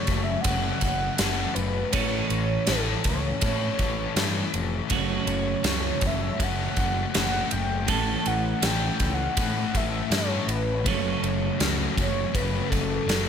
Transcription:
Already playing: F#2 C#3 F#3 A3 C#4 F#4 A4 C#5
0.07 F#1, kick, ride
0.24 E5
0.41 F#2 C#3 F#3 F#5, ride
0.45 F#1 A3 C#4 A4, kick
0.80 F#1 F#3 A3 C#4 A4, kick, ride
1.16 F#1 F#3 A3 C#4 A4, snare, ride
1.55 F#1 B4, ride
1.92 A1 A2 E3 A3 C#4 A4 C#5, kick, ride
2.28 A1 C#5, ride
2.66 A1 E3 A3 C#4 A4, snare, ride
3.04 C#2 C#5, kick, ride
3.40 A2 E3 A3 C#4 A4 C#5, kick, ride
3.77 A1 A3 C#4 A4, kick, ride
4.15 G2 E3 A3 C#4 A4, snare, ride
4.54 F1, ride
4.88 F#1 F#2 C#3 F#3 A3 C#4 F#4 A4, kick, ride
4.94 C#5
5.27 F#1, ride
5.63 C#2 F#3 A3 C#4 A4, snare, ride
6.01 F#1, kick, ride
6.07 E5
6.38 F#1 F#2 C#3 F#3 A3 C#4 A4, kick, ride
6.43 F#5
6.74 F#1 F#3 A3 C#4 A4, kick, ride
7.11 F#3 A3 C#4 A4, snare, ride
7.16 F#1 F#5
7.51 F#1 G5, ride
7.85 A1 A2 E3 A3 C#4 A4 A5, kick, ride
8.26 A1 F#5, ride
8.60 A1 E3 A3 C#4 A4, snare, ride
8.65 G5
9.00 C#2, kick, ride
9.14 F#5
9.35 A2 E3 A3 C#4 A4, kick, ride
9.72 A1 A3 C#4 A4, kick, ride
9.77 E5
10.09 G2 E3 A3 C#4 A4, snare, ride
10.16 C#5
10.47 A1 B4, ride
10.83 F#1 F#2 C#3 F#3 A3 C#4 F#4, kick, ride
10.87 A4 C#5
11.23 F#1, ride
11.58 C#2 F#3 A3 C#4 F#4, snare, ride
11.97 F#1 C#5, kick, ride
12.32 F#1 F#2 C#3 F#3 A3 C#4 F#4 B4, kick, ride
12.70 F#1 F#3 A3 C#4 F#4 A4, kick, ride
13.06 F#1 F#3 A3 C#4 F#4, ride
13.10 snare

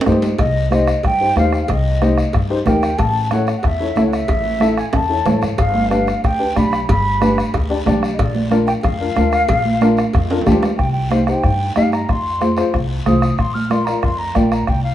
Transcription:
0.01 high timbale
0.06 G2 D#4 G4 C5, bombo low, bombo rim, high conga, short guiro
0.12 low timbale
0.22 low timbale, short guiro
0.39 C2 D#5, bombo low, bombo rim, cowbell, long guiro
0.71 D#4 G4 C5 D#5, bombo rim, high conga, short guiro
0.87 bombo rim, short guiro
1.03 G2 G5, bombo low, bombo rim, cowbell, long guiro
1.20 D#4 G4 C5
1.36 D#2 D#4 G4 C5 F5, bombo rim, high conga, low timbale, short guiro
1.53 bombo rim, short guiro
1.63 F5
1.68 C2 D#5, bombo low, bombo rim, cowbell, long guiro
2.02 D#4 G4 C5, bombo rim, high conga, short guiro
2.18 bombo rim, short guiro
2.33 G2, bombo low, bombo rim, cowbell, long guiro
2.50 D#4 G4 C5
2.66 D#2 D#4 G4 A#4 G5, bombo low, bombo rim, high conga, low conga, low timbale, short guiro
2.83 bombo rim, short guiro
2.98 A1 A5, bombo low, bombo rim, cowbell, long guiro
3.31 E4 A4 C#5 F#5, bombo rim, high conga, short guiro
3.47 bombo rim, short guiro
3.57 F#5
3.63 E2 E5, bombo low, bombo rim, cowbell, long guiro
3.80 E4 A4 C#5
3.96 C#2 E4 A4 C#5, bombo rim, high conga, short guiro
4.07 F#5
4.13 E5, bombo rim, short guiro
4.28 A1, bombo low, bombo rim, cowbell, long guiro
4.45 high conga
4.60 E4 A4 E5, bombo rim, high conga, short guiro
4.77 G#5, bombo rim, short guiro
4.93 E2 A5, bombo low, bombo rim, cowbell, high timbale, long guiro
5.09 E4 A4 C#5
5.26 A1 E4 A4 C#5, bombo rim, high conga, low conga, low timbale, short guiro
5.42 G#1, bombo rim, low timbale, short guiro
5.58 G1 F5, bombo low, bombo rim, cowbell, long guiro
5.75 high conga
5.90 D4 G4 B4 F5, bombo rim, high conga, short guiro
6.07 bombo rim, short guiro
6.24 D2 G5, bombo low, bombo rim, cowbell, long guiro
6.39 D4 G4 B4
6.55 B1 D4 G4 D5 B5, bombo low, bombo rim, high conga, short guiro
6.73 bombo rim, short guiro
6.89 G1 B5, bombo low, bombo rim, cowbell, long guiro
7.21 D4 G4 B4, bombo rim, high conga, short guiro
7.38 bombo rim, short guiro
7.54 D2, bombo low, bombo rim, cowbell, long guiro
7.70 D4 G4 D5
7.86 B1 D4 G4 D5, bombo low, bombo rim, high conga, low conga, low timbale, short guiro
8.03 bombo rim, short guiro
8.13 D#5
8.19 A#1 D5, bombo low, bombo rim, cowbell, long guiro
8.35 high conga
8.50 D4 F4 A#4 D5, bombo rim, high conga, short guiro
8.67 G5, bombo rim, short guiro
8.82 F2 F5, bombo low, bombo rim, cowbell, long guiro
9.00 D4 F4 A#4
9.16 D2 D4 F4 A#4, bombo rim, high conga, low timbale, short guiro
9.32 bombo rim, short guiro
9.48 A#1, bombo low, bombo rim, cowbell, long guiro
9.65 high conga
9.81 D4 F4 A#4, bombo rim, high conga, short guiro
9.97 bombo rim, short guiro
10.13 F2, bombo low, bombo rim, cowbell, long guiro
10.30 D4 F4 A#4, high timbale
10.41 high timbale
10.46 D2 D4 F4 G4, bombo low, bombo rim, high conga, low conga, short guiro
10.52 low timbale
10.63 bombo rim, low timbale, short guiro
10.77 C2 G5, bombo low, bombo rim, long guiro
10.92 G5
11.10 D#4 G4 C5 F5, bombo rim, high conga, short guiro
11.27 D#4 G4 C5 G5, bombo rim, short guiro
11.44 G2, bombo low, bombo rim, long guiro
11.76 G2 D#4 G4 D#5 F5, bombo rim, high conga, short guiro
11.92 A#5, bombo rim, short guiro
12.09 F2 C6, bombo low, bombo rim, long guiro
12.40 F4 G#4 C5, bombo rim, high conga, short guiro
12.57 F4 G#4 C5, bombo rim, short guiro
12.74 C2, bombo low, bombo rim, long guiro
13.06 C2 F4 G#4 C5 D#6, bombo rim, high conga, low conga, short guiro
13.22 bombo rim, short guiro
13.38 A#1 C6, bombo low, bombo rim, long guiro
13.54 F6, high conga
13.70 F4 A#4 D5 C6, bombo rim, high conga, short guiro
13.85 F4 A#4 D5 A#5, bombo rim, short guiro
14.02 F2 C6, bombo low, bombo rim, long guiro
14.19 A#5
14.35 A#1 F4 A#4 D5 G5, bombo low, bombo rim, high conga, short guiro
14.52 A#5, bombo rim, short guiro
14.67 C2 G5, bombo low, bombo rim, long guiro
14.83 F5

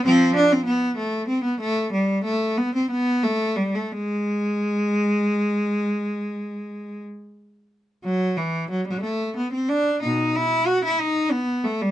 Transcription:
0.06 F3 C4
0.36 D4
0.53 C4
0.66 B3
0.98 A3
1.28 C4
1.44 B3
1.61 A3
1.93 G3
2.25 A3
2.58 B3
2.76 C4
2.91 B3
3.23 A3
3.57 G3
3.75 A3
3.92 G#3
8.04 F#3
8.37 E3
8.71 F#3
8.88 G3
9.03 A3
9.37 B3
9.53 C4
9.69 D4
10.02 B2 D#4
10.36 E4
10.67 F#4
10.85 E4
11.00 D#4
11.32 B3
11.64 A3
11.82 G3

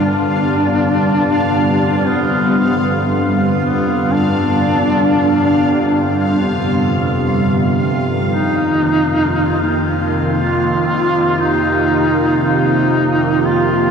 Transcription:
Already playing: F2 G2 C3 D3 G3 B3 F4 F5
0.04 D4
2.08 B3
3.61 B3
4.12 D4
8.28 D#3 D#4
8.60 A#3
8.67 F4
10.39 F4
11.04 G4
11.40 D#4
12.43 D#4
13.45 F4

